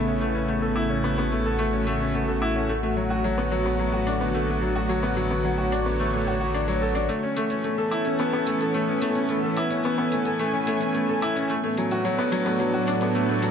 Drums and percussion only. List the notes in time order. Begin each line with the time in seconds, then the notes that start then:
7.09 closed hi-hat
7.37 closed hi-hat
7.50 closed hi-hat
7.64 closed hi-hat
7.91 closed hi-hat
8.05 closed hi-hat
8.19 closed hi-hat
8.47 closed hi-hat
8.61 closed hi-hat
8.74 closed hi-hat
9.02 closed hi-hat
9.15 closed hi-hat
9.29 closed hi-hat
9.57 closed hi-hat
9.71 closed hi-hat
9.84 closed hi-hat
10.12 closed hi-hat
10.25 closed hi-hat
10.39 closed hi-hat
10.67 closed hi-hat
10.81 closed hi-hat
10.95 closed hi-hat
11.22 closed hi-hat
11.36 closed hi-hat
11.50 closed hi-hat
11.77 closed hi-hat
11.91 closed hi-hat
12.05 closed hi-hat
12.32 closed hi-hat
12.46 closed hi-hat
12.60 closed hi-hat
12.87 closed hi-hat
13.01 closed hi-hat
13.15 closed hi-hat
13.42 closed hi-hat